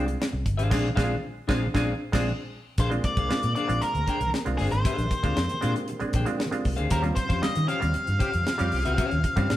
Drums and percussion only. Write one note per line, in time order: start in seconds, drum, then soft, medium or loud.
0.08 closed hi-hat soft
0.22 snare loud
0.46 kick medium
0.46 closed hi-hat medium
0.59 closed hi-hat medium
0.71 kick loud
0.71 snare loud
0.71 crash loud
0.97 kick loud
0.97 snare loud
1.49 kick loud
1.49 snare loud
1.75 kick medium
1.75 snare loud
2.13 kick loud
2.13 snare loud
2.13 crash medium
2.78 kick loud
2.78 closed hi-hat loud
2.91 closed hi-hat soft
3.04 kick loud
3.04 closed hi-hat medium
3.17 kick loud
3.17 closed hi-hat soft
3.31 snare loud
3.43 closed hi-hat soft
3.56 closed hi-hat medium
3.69 closed hi-hat medium
3.82 closed hi-hat medium
3.95 closed hi-hat soft
4.08 kick medium
4.08 closed hi-hat medium
4.21 closed hi-hat medium
4.34 snare loud
4.46 closed hi-hat medium
4.59 open hi-hat medium
4.72 closed hi-hat soft
4.85 kick loud
4.85 closed hi-hat loud
4.98 closed hi-hat soft
5.11 kick loud
5.11 closed hi-hat medium
5.24 kick medium
5.24 closed hi-hat soft
5.37 snare loud
5.49 closed hi-hat medium
5.62 closed hi-hat medium
5.76 closed hi-hat medium
5.88 closed hi-hat medium
6.00 closed hi-hat soft
6.13 kick loud
6.13 closed hi-hat medium
6.26 closed hi-hat medium
6.40 snare loud
6.52 closed hi-hat medium
6.65 kick medium
6.65 open hi-hat medium
6.78 closed hi-hat medium
6.90 kick loud
6.90 closed hi-hat loud
7.04 closed hi-hat soft
7.16 kick loud
7.16 closed hi-hat medium
7.30 kick medium
7.30 closed hi-hat medium
7.43 snare loud
7.55 snare soft
7.55 closed hi-hat medium
7.69 closed hi-hat medium
7.82 closed hi-hat medium
7.94 closed hi-hat medium
8.07 closed hi-hat soft
8.20 kick loud
8.20 closed hi-hat medium
8.33 closed hi-hat soft
8.47 snare loud
8.59 closed hi-hat medium
8.72 open hi-hat medium
8.85 closed hi-hat medium
8.98 kick loud
8.98 closed hi-hat loud
9.11 closed hi-hat soft
9.24 kick loud
9.24 closed hi-hat medium
9.37 kick loud
9.37 closed hi-hat medium
9.50 snare loud